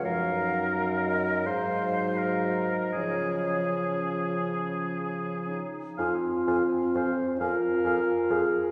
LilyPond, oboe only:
\new Staff \with { instrumentName = "Oboe" } { \time 6/8 \key f \phrygian \tempo 4. = 41 bes'4. c''8. bes'8. | aes'2~ aes'8. r16 | f''8 f''8 f''8 f''8 f''8 f''8 | }